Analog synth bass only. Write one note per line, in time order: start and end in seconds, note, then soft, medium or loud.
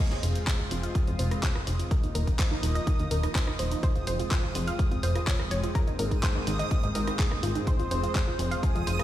0.23 0.40 F1 medium
0.71 0.88 F1 medium
1.07 1.15 F2 medium
1.19 1.36 F1 loud
1.67 1.84 F1 medium
2.15 2.32 D#1 loud
2.63 2.80 D#1 loud
2.99 3.07 D#2 medium
3.11 3.28 D#1 medium
3.59 3.76 D#1 medium
4.07 4.24 F1 medium
4.55 4.72 F1 loud
4.91 4.99 F2 medium
5.03 5.20 F1 medium
5.51 5.68 F1 medium
5.99 6.16 G#1 medium
6.47 6.64 G#1 loud
6.83 6.91 G#2 medium
6.95 7.12 G#1 medium
7.43 7.60 G#1 medium
7.91 8.08 F1 medium
8.39 8.56 F1 loud
8.75 8.83 F2 medium
8.87 9.04 F1 medium